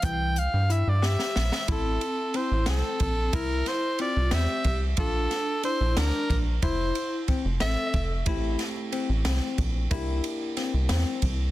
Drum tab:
RD |----------|x-x-x-x-x-|x-x-x-x-x-|x-x-x-x-x-|
HH |x-x-x-----|----------|----------|----------|
SD |------oooo|------o---|--o---o---|--o---o---|
BD |o---------|o-------o-|o-------o-|o-------o-|

RD |x-x-x-x-x-|x-x-x-x-x-|x-x-x-x-x-|
HH |----------|----------|----------|
SD |------o---|--o---o---|----o-o---|
BD |o---o---o-|o-------o-|o-------o-|